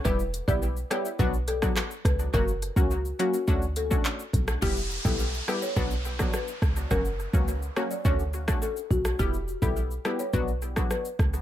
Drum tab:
CC |----------------|----------------|x---------------|----------------|
HH |--x---x---x---x-|--x---x---x---x-|----------------|----------------|
SH |xxxxxxxxxxxxxxxx|xxxxxxxxxxxxxxxx|xxxxxxxxxxxxxxxx|xxxxxxxxxxxxxxxx|
CP |------------x---|------------x---|----------------|----------------|
SD |------r----rr-r-|---------------r|------r----rr-r-|------r----r---r|
BD |o--o----o--o--o-|o--o----o--o--o-|o--o----o--o--o-|o--o----o--o--o-|

CC |----------------|
HH |----------------|
SH |xxxxxxxxxxxxxxxx|
CP |----------------|
SD |------r----rr-r-|
BD |o--o----o--o--o-|